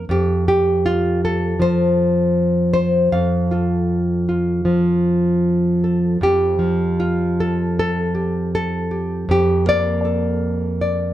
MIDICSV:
0, 0, Header, 1, 2, 480
1, 0, Start_track
1, 0, Key_signature, -1, "major"
1, 0, Tempo, 758534
1, 53, Time_signature, 4, 2, 24, 8
1, 1972, Tempo, 775194
1, 4372, Tempo, 764331
1, 6975, End_track
2, 0, Start_track
2, 0, Title_t, "Nylon-string guitar"
2, 0, Program_c, 0, 24
2, 57, Note_on_c, 0, 41, 77
2, 70, Note_on_c, 0, 67, 79
2, 297, Note_off_c, 0, 67, 0
2, 305, Note_on_c, 0, 67, 79
2, 542, Note_on_c, 0, 65, 82
2, 776, Note_off_c, 0, 65, 0
2, 789, Note_on_c, 0, 69, 79
2, 1009, Note_on_c, 0, 53, 59
2, 1017, Note_off_c, 0, 67, 0
2, 1024, Note_on_c, 0, 72, 98
2, 1500, Note_off_c, 0, 69, 0
2, 1723, Note_off_c, 0, 72, 0
2, 1731, Note_on_c, 0, 72, 89
2, 1972, Note_off_c, 0, 72, 0
2, 1974, Note_off_c, 0, 41, 0
2, 1977, Note_on_c, 0, 41, 76
2, 1977, Note_on_c, 0, 77, 86
2, 2217, Note_on_c, 0, 65, 45
2, 2223, Note_on_c, 0, 69, 45
2, 2691, Note_off_c, 0, 65, 0
2, 2697, Note_on_c, 0, 65, 44
2, 2914, Note_off_c, 0, 53, 0
2, 2922, Note_on_c, 0, 53, 54
2, 3651, Note_off_c, 0, 69, 0
2, 3658, Note_on_c, 0, 69, 42
2, 3867, Note_off_c, 0, 69, 0
2, 3871, Note_off_c, 0, 65, 0
2, 3880, Note_off_c, 0, 41, 0
2, 3888, Note_on_c, 0, 41, 77
2, 3896, Note_off_c, 0, 77, 0
2, 3902, Note_on_c, 0, 67, 87
2, 4115, Note_off_c, 0, 53, 0
2, 4122, Note_on_c, 0, 53, 59
2, 4376, Note_on_c, 0, 65, 86
2, 4630, Note_on_c, 0, 69, 85
2, 4859, Note_off_c, 0, 67, 0
2, 4863, Note_off_c, 0, 69, 0
2, 4876, Note_on_c, 0, 69, 99
2, 5094, Note_off_c, 0, 65, 0
2, 5097, Note_on_c, 0, 67, 48
2, 5342, Note_off_c, 0, 69, 0
2, 5350, Note_on_c, 0, 69, 94
2, 5569, Note_off_c, 0, 67, 0
2, 5577, Note_on_c, 0, 67, 46
2, 5786, Note_off_c, 0, 67, 0
2, 5805, Note_off_c, 0, 41, 0
2, 5808, Note_off_c, 0, 53, 0
2, 5813, Note_on_c, 0, 41, 77
2, 5821, Note_off_c, 0, 69, 0
2, 5828, Note_on_c, 0, 67, 90
2, 6050, Note_on_c, 0, 58, 67
2, 6060, Note_off_c, 0, 67, 0
2, 6065, Note_on_c, 0, 74, 108
2, 6292, Note_on_c, 0, 69, 47
2, 6764, Note_off_c, 0, 74, 0
2, 6772, Note_on_c, 0, 74, 54
2, 6975, Note_off_c, 0, 41, 0
2, 6975, Note_off_c, 0, 58, 0
2, 6975, Note_off_c, 0, 69, 0
2, 6975, Note_off_c, 0, 74, 0
2, 6975, End_track
0, 0, End_of_file